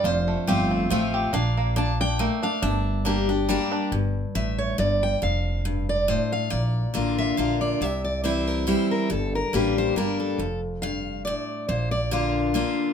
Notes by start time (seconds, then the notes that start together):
0.04 F1 F2 F4 C5
0.28 A3
0.47 G1 F3 A3 C4 F4 G4
0.71 C4
0.90 A1 F3 A3 C4 F4
1.14 G4
1.33 A#1 A#2 D4 F5
1.57 A#3
1.76 A#2 D4 A5
2.01 D4 G5
2.19 A3 A#3
2.43 D4 F5
2.62 G1 G2 D4 E5
3.05 G3 A#3 D4 G4
3.29 D4 G4
3.49 G3 A#3 D4 G4
3.72 D4
3.92 G1 G2
4.35 A1 A2 E5
4.58 C#5
4.78 G1 G2 D5
5.03 G5
5.22 F1 F2 F5
5.65 G2
5.89 D5
6.08 A2 C5
6.32 F5
6.50 A#1 A#2 D5
6.94 A1 D3 A#3 D4 F4
7.18 E5
7.37 A#1 D3 A#3 D4 F4 F5
7.61 D5
7.81 C2 C3 E5
8.04 D5
8.24 E3 G3 C4 E4 C5
8.47 A#4
8.67 E3 G3 C4 E4 C5
8.91 A#4
9.10 G1 G2 A4
9.35 A#4
9.53 A1 G3 A#3 D4 G4 B4
9.78 C5
9.96 G1 G3 A#3 D4 G4 A#4
10.20 A4
10.38 F1 F2
10.82 G2 F5
11.25 A2 D5
11.68 A#1 A#2 C5
11.91 D5
12.11 D3 A#3 D4 F4
12.54 D3 A#3 D4 F4